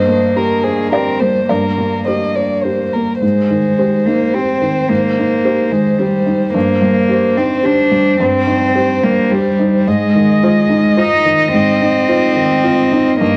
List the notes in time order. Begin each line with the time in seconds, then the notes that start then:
Already playing: G2 A#3 C5 D#5
0.08 A#3
0.36 G4 A#4
0.63 G#4 C5
0.92 C4 G4 A#4 D5
1.20 G3 A#3 C5
1.49 G2 A#3 A#4 D5
1.78 G3
2.06 G4 C5 D#5
2.36 C5 D5
2.63 G4 C5
2.93 A#3 A#4
3.21 G#2 G#3 C5
3.50 D#3
3.78 G4 C5
4.05 A#3 D#4
4.34 C4 G4 C5
4.61 D#3
4.89 G#2 A#3
5.19 D#4
5.45 G4 C5
5.71 D#3 G#3
5.98 G3 G4 C5
6.26 D#4
6.54 G2 A#3 C5
6.82 G3
7.09 G4 C5
7.37 C4 D#4
7.63 D4 G4 C5
7.92 G3
8.20 G2 C4
8.47 D#4
8.75 G4 C5
9.03 G3 A#3
9.31 G3 G4 C5
9.59 D#4
9.87 G#2 G#3 D#5
10.15 D#3
10.43 F4 C5
10.70 D#4
10.97 D#4 F4 C5
11.26 D#3
11.53 G#2 C4
11.81 D#4
12.09 F4 C5
12.36 D#3
12.64 F4 C5
12.92 D#4
13.20 G2 A#3 D#5